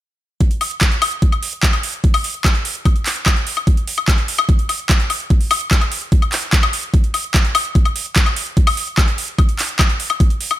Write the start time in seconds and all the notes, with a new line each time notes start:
0.41 kick, closed hi-hat
0.51 closed hi-hat
0.61 open hi-hat, high woodblock
0.71 closed hi-hat
0.81 kick, clap, closed hi-hat
0.92 closed hi-hat
1.02 open hi-hat, high woodblock
1.12 closed hi-hat
1.22 kick, closed hi-hat
1.32 closed hi-hat, high woodblock
1.43 open hi-hat
1.53 closed hi-hat
1.63 kick, clap, closed hi-hat
1.73 closed hi-hat, high woodblock
1.83 open hi-hat
1.94 closed hi-hat
2.04 kick, closed hi-hat
2.14 open hi-hat, high woodblock
2.24 open hi-hat
2.34 closed hi-hat
2.45 kick, clap, closed hi-hat, high woodblock
2.55 closed hi-hat
2.65 open hi-hat
2.75 closed hi-hat
2.85 kick, closed hi-hat, high woodblock
2.96 closed hi-hat
3.06 clap, open hi-hat
3.16 closed hi-hat
3.26 kick, clap, closed hi-hat, high woodblock
3.36 closed hi-hat
3.47 open hi-hat
3.57 closed hi-hat, high woodblock
3.67 kick, closed hi-hat
3.77 closed hi-hat
3.87 open hi-hat
3.98 closed hi-hat, high woodblock
4.08 kick, clap, closed hi-hat
4.18 closed hi-hat
4.28 open hi-hat
4.38 closed hi-hat, high woodblock
4.49 kick, closed hi-hat
4.59 closed hi-hat
4.69 open hi-hat, high woodblock
4.79 closed hi-hat
4.90 kick, clap, closed hi-hat
5.00 closed hi-hat
5.10 open hi-hat, high woodblock
5.20 closed hi-hat
5.30 kick, closed hi-hat
5.41 open hi-hat
5.51 open hi-hat, high woodblock
5.61 closed hi-hat
5.71 kick, clap, closed hi-hat
5.81 closed hi-hat, high woodblock
5.92 open hi-hat
6.02 closed hi-hat
6.12 kick, closed hi-hat
6.22 closed hi-hat, high woodblock
6.32 clap, open hi-hat
6.43 closed hi-hat
6.53 kick, clap, closed hi-hat
6.63 closed hi-hat, high woodblock
6.73 open hi-hat
6.83 closed hi-hat
6.94 kick, closed hi-hat
7.04 closed hi-hat
7.14 open hi-hat, high woodblock
7.24 closed hi-hat
7.34 kick, clap, closed hi-hat
7.45 closed hi-hat
7.55 open hi-hat, high woodblock
7.65 closed hi-hat
7.75 kick, closed hi-hat
7.85 closed hi-hat, high woodblock
7.96 open hi-hat
8.06 closed hi-hat
8.16 kick, clap, closed hi-hat
8.26 closed hi-hat, high woodblock
8.36 open hi-hat
8.47 closed hi-hat
8.57 kick, closed hi-hat
8.67 open hi-hat, high woodblock
8.77 open hi-hat
8.87 closed hi-hat
8.98 kick, clap, closed hi-hat, high woodblock
9.08 closed hi-hat
9.18 open hi-hat
9.28 closed hi-hat
9.38 kick, closed hi-hat, high woodblock
9.49 closed hi-hat
9.59 clap, open hi-hat
9.69 closed hi-hat
9.79 kick, clap, closed hi-hat, high woodblock
9.90 closed hi-hat
10.00 open hi-hat
10.10 closed hi-hat, high woodblock
10.20 kick, closed hi-hat
10.30 closed hi-hat
10.41 open hi-hat
10.51 closed hi-hat, high woodblock